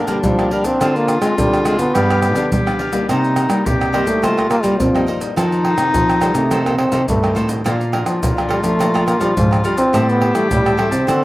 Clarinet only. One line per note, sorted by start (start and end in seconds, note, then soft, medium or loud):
0.00 0.82 D4 medium
0.80 1.96 F4 loud
1.94 2.52 G4 loud
2.52 3.05 G4 loud
3.08 3.67 D#4 loud
3.66 4.25 G4 loud
4.23 5.10 F4 medium
5.37 7.33 D#4 loud
7.66 9.95 F4 medium
9.94 11.09 G4 loud
11.08 11.24 A4 loud